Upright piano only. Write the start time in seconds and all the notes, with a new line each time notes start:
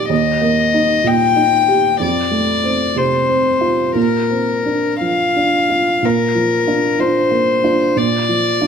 Already playing: D#2 A#2 A#3 D#4 G4
0.09 D#2
0.41 A#3
0.74 D#4
1.04 A#2
1.36 D#4
1.68 G4
2.00 F2
2.31 A3
2.64 C4
2.96 C3
3.29 C4
3.61 F4
3.95 A#2
4.30 C4
4.65 D4
5.01 F3
5.36 D4
5.70 F4
6.03 A#2
6.35 F3
6.67 D4 F4
6.99 D4 F4
7.31 A#3
7.64 D4 F4
7.96 A#2
8.29 F3
8.61 D4 F4